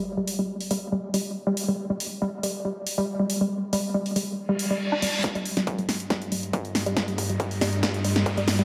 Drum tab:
HH |--o--oo---o---o-|--o---o---o---o-|--o--oo---o---o-|xxoxxxoxxxoxxxox|
SD |----------------|----------------|----------------|o--o--o-o-----o-|
BD |----------------|----------------|----------------|o---o---o---o---|

HH |xxoxxooxxxoxxxox|
SD |o-----o-o--o--o-|
BD |o-o-o---o---o---|